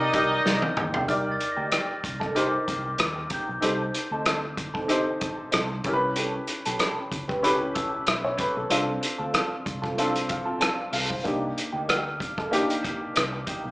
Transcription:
Already playing: grand piano D#4 G4 A#4 D5, violin section D#4 D#5
0.13 fingered electric bass C2, clean electric guitar A#3 D#4 G4, grand piano D#4 G4 A#4 D#5, glockenspiel G6, kick, closed hi-hat
0.31 muted clean electric guitar stroke
0.45 fingered electric bass C2, muted clean electric guitar stroke, snare
0.62 muted clean electric guitar stroke, high tom
0.76 fingered electric bass D#2, clean electric guitar A#3 D#4 G4, mid tom
0.93 fingered electric bass C2, clean electric guitar A#3 D#4 G4, floor tom
1.07 fingered electric bass C2, clean electric guitar A#3 D#4 G4, grand piano D#4 G4 A#4 D5, glockenspiel F6, kick, closed hi-hat
1.32 glockenspiel A6
1.39 muted clean electric guitar stroke, closed hi-hat
1.52 glockenspiel A#6
1.57 fingered electric bass D2, clean electric guitar A#3 D#4 G4
1.71 clean electric guitar A#3 D#4 G4, cross-stick, closed hi-hat
2.04 fingered electric bass C2, muted clean electric guitar stroke, kick, closed hi-hat
2.20 clean electric guitar A#3 D#4 A4, kick, cross-stick
2.35 clean electric guitar A#3 D#4 G4, grand piano D#4 G4 A#4 C5, closed hi-hat
2.40 glockenspiel D6
2.53 muted clean electric guitar stroke
2.67 fingered electric bass C2, clean electric guitar A#3 D#4 G4, kick, closed hi-hat
2.86 muted clean electric guitar stroke
2.98 fingered electric bass D#2, muted clean electric guitar stroke, cross-stick, closed hi-hat
3.16 muted clean electric guitar stroke
3.30 clean electric guitar A#3 D#4 G4, kick, closed hi-hat
3.34 glockenspiel G6
3.48 fingered electric bass B1, muted clean electric guitar stroke
3.61 fingered electric bass C2, clean electric guitar C4 D#4 A4, grand piano D#4 G4 A4 C5, closed hi-hat
3.94 muted clean electric guitar stroke, closed hi-hat
4.11 fingered electric bass D2, clean electric guitar C4 D#4 A4
4.25 clean electric guitar C4 D#4 A4, cross-stick, closed hi-hat
4.57 muted clean electric guitar stroke, kick, closed hi-hat
4.74 clean electric guitar C4 D#4 A4, kick
4.88 clean electric guitar C4 D#4 A4, grand piano D#4 G4 A4 C5, closed hi-hat
5.06 muted clean electric guitar stroke
5.20 clean electric guitar C4 D#4 A4, kick, closed hi-hat
5.38 muted clean electric guitar stroke
5.51 fingered electric bass C2, clean electric guitar C4 D#4 A4, cross-stick, closed hi-hat
5.70 muted clean electric guitar stroke
5.84 fingered electric bass C2, clean electric guitar C#4 G4 A4, grand piano C#4 E4 G4 A#4, kick, closed hi-hat
5.93 grand piano B4
6.02 muted clean electric guitar stroke
6.15 clean electric guitar C#4 G4 A4, closed hi-hat
6.47 muted clean electric guitar stroke, closed hi-hat
6.65 fingered electric bass B1, clean electric guitar C#4 G4 A4, closed hi-hat
6.79 clean electric guitar C#4 G4 A4, cross-stick, closed hi-hat
7.11 fingered electric bass C#2, muted clean electric guitar stroke, kick, closed hi-hat
7.28 clean electric guitar C#4 G4 B4, kick, cross-stick
7.43 grand piano C#4 E4 G4 B4, clean electric guitar C#4 G4 A4, closed hi-hat
7.60 muted clean electric guitar stroke
7.74 clean electric guitar C#4 G4 A4, glockenspiel E6, kick, closed hi-hat
7.92 muted clean electric guitar stroke
8.07 fingered electric bass B1, grand piano E5, muted clean electric guitar stroke, cross-stick, closed hi-hat
8.24 grand piano C#5, muted clean electric guitar stroke
8.38 clean electric guitar C#4 G4 A4, grand piano B4, kick, closed hi-hat
8.57 fingered electric bass B1, grand piano A4, muted clean electric guitar stroke
8.70 fingered electric bass C2, grand piano C4 D4 F4 A4, clean electric guitar C4 F4 A4, closed hi-hat
9.01 muted clean electric guitar stroke, closed hi-hat
9.18 fingered electric bass D2, clean electric guitar C4 F4 A4
9.33 clean electric guitar C4 F4 A4, cross-stick, closed hi-hat
9.66 fingered electric bass C2, muted clean electric guitar stroke, kick, closed hi-hat
9.82 clean electric guitar C4 F4 A4, kick, cross-stick
9.96 clean electric guitar C4 F4 A4, grand piano C4 D4 F4 A4, closed hi-hat
10.15 closed hi-hat
10.28 grand piano F5, muted clean electric guitar stroke, kick, closed hi-hat
10.45 clean electric guitar C4 F4 A4
10.59 clean electric guitar C4 F4 A4, grand piano A5, cross-stick, closed hi-hat
10.77 muted clean electric guitar stroke
10.91 fingered electric bass C2, clean electric guitar C4 F4 A4, grand piano F5, open hi-hat
11.09 grand piano C5, muted clean electric guitar stroke, kick
11.24 fingered electric bass C2, grand piano A#3 D4 D#4 G4, clean electric guitar A#3 D#4 G4, kick, closed hi-hat
11.57 muted clean electric guitar stroke, closed hi-hat
11.73 fingered electric bass D2, clean electric guitar A#3 D#4 G4
11.88 clean electric guitar A#3 D#4 G4, glockenspiel F6, cross-stick, closed hi-hat
12.20 muted clean electric guitar stroke, kick, closed hi-hat
12.38 clean electric guitar A#3 D#4 A4, kick, cross-stick
12.51 clean electric guitar A#3 D#4 G4, grand piano A#3 D4 D#4 G4, closed hi-hat
12.69 muted clean electric guitar stroke, closed hi-hat
12.83 clean electric guitar A#3 D#4 G4, kick, closed hi-hat
13.00 muted clean electric guitar stroke
13.15 fingered electric bass C2, muted clean electric guitar stroke, cross-stick, closed hi-hat
13.33 muted clean electric guitar stroke
13.47 clean electric guitar A#3 D#4 G4, kick, closed hi-hat
13.64 fingered electric bass B1, muted clean electric guitar stroke

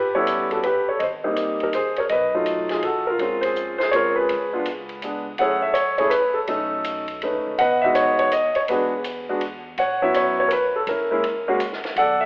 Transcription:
Already playing: upright bass A1, grand piano G4 B4
0.15 grand piano G3 B3 C#4 E4 A4 C#5
0.27 hi-hat pedal, ride
0.51 grand piano F#4 A4, ride
0.63 grand piano G4 B4, ride
0.89 grand piano A4 C#5
0.99 upright bass G#1, grand piano C5 D#5, ride
1.24 grand piano G3 A#3 C4 D#4
1.36 hi-hat pedal, ride
1.60 grand piano G4 A#4, ride
1.73 grand piano G#4 C5, hi-hat pedal, ride
1.96 grand piano A#4 C#5, ride
2.09 upright bass B1, grand piano B4 D#5, ride
2.35 grand piano F#3 A3 D#4 F4
2.46 hi-hat pedal, ride
2.69 grand piano F4 G#4, snare, ride
2.82 upright bass B1, grand piano F#4 A4, ride
3.07 grand piano F4 A#4
3.19 upright bass A#1, grand piano G#3 C4 C#4 F4, ride
3.41 grand piano G#4 C5, ride
3.56 hi-hat pedal
3.78 grand piano C5, snare
3.83 grand piano G#4
3.91 grand piano G#3 C4 C#4 F4 C#5, hi-hat pedal, ride
3.96 grand piano A#4
4.16 grand piano B4
4.21 grand piano G#4
4.29 upright bass C#2, ride
4.53 grand piano G#3 B3 D4 F4
4.65 hi-hat pedal, ride
4.89 ride
5.02 grand piano G#3 B3 D4 G#4, hi-hat pedal, ride
5.38 upright bass F#2, grand piano A3 C#4 E4 G#4 A4 C#5 F#5, ride
5.62 grand piano E5
5.74 grand piano C#5, hi-hat pedal, ride
5.98 grand piano A3 C#4 E4 G#4 C#5, ride
6.10 grand piano B4, hi-hat pedal, ride
6.34 grand piano A4
6.47 upright bass B1, grand piano A3 C#4 D#4 A4, ride
6.84 hi-hat pedal, ride
7.08 ride
7.22 grand piano A3 C#4 D#4 B4, ride
7.34 upright bass C#2
7.47 upright bass D#2
7.58 upright bass E2, grand piano B4 D#5 F#5, ride
7.82 grand piano G#3 B3 D#4 F#4 E5
7.95 grand piano C#5, hi-hat pedal, ride
8.19 grand piano C#5, ride
8.32 grand piano D#5, hi-hat pedal, ride
8.55 grand piano C#5, muted upright bass stroke, ride
8.68 upright bass E2, grand piano G#3 B3 D4 F#4 G#4 B4, ride
9.04 hi-hat pedal, ride
9.29 grand piano G#3 B3 D4 F#4
9.41 ride
9.78 upright bass A1, grand piano C#5 F#5, ride
10.02 grand piano F#3 B3 C#4 E4 E5
10.14 grand piano C#5, hi-hat pedal, ride
10.40 grand piano C#5
10.48 grand piano A#4, hi-hat pedal, ride
10.53 grand piano B4
10.76 grand piano A4
10.87 upright bass F#1, grand piano C#4 E4 A#4, ride
11.11 grand piano G#3 A#3 C#4 E4
11.24 ride
11.48 grand piano G#3 A#3 C#4 F#4
11.60 hi-hat pedal, ride
11.73 snare
11.84 muted upright bass stroke, snare, ride
11.96 upright bass B1, grand piano A4 D5 F#5, ride
12.21 grand piano E5

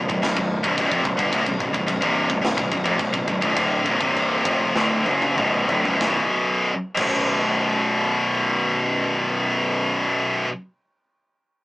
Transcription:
0.08 picked electric bass B0, distorted electric guitar B1 F#2, kick
0.22 picked electric bass B0, distorted electric guitar B1 F#2, snare, crash
0.36 picked electric bass B0, distorted electric guitar B1 F#2, kick
0.63 picked electric bass C1, distorted electric guitar C2 G2, kick
0.77 picked electric bass B0, distorted electric guitar B1 F#2, kick, crash
0.90 picked electric bass F1, distorted electric guitar F2 C3, kick
1.03 picked electric bass B0, distorted electric guitar B1 F#2, kick
1.17 picked electric bass G1, distorted electric guitar G2 D3, kick
1.31 picked electric bass B0, distorted electric guitar B1 F#2, kick, crash
1.45 picked electric bass B0, distorted electric guitar B1 F#2, kick
1.60 picked electric bass B0, distorted electric guitar B1 F#2, kick
1.73 picked electric bass B0, distorted electric guitar B1 F#2, kick
1.87 picked electric bass B0, distorted electric guitar B1 F#2, kick, crash
2.01 picked electric bass C1, distorted electric guitar C2 G2 C3, kick
2.29 picked electric bass B0, distorted electric guitar B1 F#2, kick
2.41 picked electric bass B0, distorted electric guitar B1 F#2
2.45 snare, crash
2.57 picked electric bass B0, distorted electric guitar B1 F#2, kick
2.71 picked electric bass B0, distorted electric guitar B1 F#2, kick
2.84 picked electric bass F1, distorted electric guitar F2 C3, kick
2.99 picked electric bass B0, distorted electric guitar B1 F#2, kick, crash
3.13 picked electric bass B0, distorted electric guitar B1 F#2, kick
3.27 picked electric bass B0, distorted electric guitar B1 F#2, kick
3.41 picked electric bass B0, distorted electric guitar B1 F#2, kick
3.55 picked electric bass D1, distorted electric guitar D2 A2 D3, kick, crash
3.85 picked electric bass B0, distorted electric guitar B1 F#2, kick
3.99 picked electric bass C1, distorted electric guitar C2 G2 C3, kick
4.16 crash
4.45 picked electric bass F1, distorted electric guitar F2 C3 F3, kick
4.76 picked electric bass D1, distorted electric guitar D2 A2 D3, snare
5.06 picked electric bass F#1, distorted electric guitar F#2 C#3 F#3, high tom
5.22 high tom
5.36 picked electric bass B0, distorted electric guitar B1 F#2 B2, mid tom
5.68 picked electric bass D1, distorted electric guitar D2 A2, floor tom
5.83 picked electric bass B0, distorted electric guitar B1 F#2, floor tom
5.97 picked electric bass B0, distorted electric guitar B1 F#2, kick, snare
6.02 distorted electric guitar B2
6.95 picked electric bass B0, distorted electric guitar B1 F#2 B2, kick, crash
6.99 distorted electric guitar B1

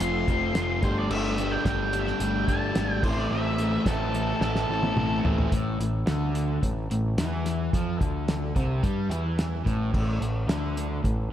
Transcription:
0.00 picked electric bass F1, overdriven electric guitar F3 A3 C4 F4, lead electric guitar C6, closed hi-hat
0.28 picked electric bass F1, overdriven electric guitar F3 A3 C4 F4, kick, closed hi-hat
0.54 picked electric bass F1, overdriven electric guitar F3 A3 C4 F4, snare, closed hi-hat
0.82 picked electric bass G1, overdriven electric guitar G3 A3 D4 G4, lead electric guitar C5, kick, closed hi-hat
0.98 lead electric guitar D5
1.09 picked electric bass G1, overdriven electric guitar G3 A3 D4 G4, lead electric guitar E5, crash
1.38 overdriven electric guitar G3 A3 D4 G4, closed hi-hat
1.52 lead electric guitar G5
1.65 picked electric bass G1, overdriven electric guitar G3 A3 D4 G4, lead electric guitar G5, kick, snare, closed hi-hat
1.93 overdriven electric guitar G3 A3 D4 G4, closed hi-hat
1.99 lead electric guitar E5
2.07 lead electric guitar G5, snare
2.20 picked electric bass G1, overdriven electric guitar G3 A3 D4 G4, closed hi-hat
2.48 overdriven electric guitar G3 A3 D4 G4, lead electric guitar A5, kick, closed hi-hat
2.75 picked electric bass G#1, overdriven electric guitar G3 A3 D4 G4, snare, closed hi-hat
2.93 lead electric guitar G5
3.03 picked electric bass A1, overdriven electric guitar A2 E3 A3 C4 E4, lead electric guitar C5, kick, crash
3.18 lead electric guitar D5
3.31 picked electric bass A1, overdriven electric guitar A2 E3 A3 C4 E4, lead electric guitar E5
3.58 overdriven electric guitar A2 E3 A3 C4 E4, closed hi-hat
3.86 picked electric bass A1, overdriven electric guitar A2 E3 A3 C4 E4, lead electric guitar A4, kick, snare, closed hi-hat
4.14 overdriven electric guitar A2 E3 A3 C4 E4, closed hi-hat
4.41 picked electric bass A1, overdriven electric guitar A2 E3 A3 C4 E4, lead electric guitar A4, snare
4.56 snare
4.68 picked electric bass A1, overdriven electric guitar A2 E3 A3 C4 E4
4.83 high tom
4.96 picked electric bass A1, overdriven electric guitar A2 E3 A3 C4 E4, mid tom
5.24 picked electric bass A1, overdriven electric guitar A2 E3 A3 C4 E4, floor tom
5.38 floor tom
5.52 picked electric bass A1, overdriven electric guitar A2, kick, closed hi-hat
5.79 picked electric bass A1, overdriven electric guitar A2, closed hi-hat
6.06 picked electric bass D2, overdriven electric guitar D3, snare, closed hi-hat
6.35 closed hi-hat
6.63 picked electric bass A1, overdriven electric guitar A2, kick, closed hi-hat
6.90 picked electric bass A1, overdriven electric guitar A2, closed hi-hat
7.18 picked electric bass E2, overdriven electric guitar E3, snare, closed hi-hat
7.46 snare, closed hi-hat
7.73 picked electric bass F2, overdriven electric guitar F3, kick, closed hi-hat
8.00 picked electric bass D2, overdriven electric guitar D3, kick, closed hi-hat
8.28 snare, closed hi-hat
8.55 picked electric bass C2, overdriven electric guitar C3, kick, closed hi-hat
8.83 picked electric bass G2, overdriven electric guitar G3, kick, closed hi-hat
9.09 picked electric bass E2, overdriven electric guitar E3, closed hi-hat
9.39 snare, closed hi-hat
9.65 picked electric bass A1, overdriven electric guitar A2, kick, snare, closed hi-hat
9.93 picked electric bass A1, overdriven electric guitar A2, kick, crash
10.20 picked electric bass A1, overdriven electric guitar A2, closed hi-hat
10.47 picked electric bass D2, overdriven electric guitar D3, snare, closed hi-hat
10.77 closed hi-hat
11.04 picked electric bass A1, overdriven electric guitar A2, kick, closed hi-hat

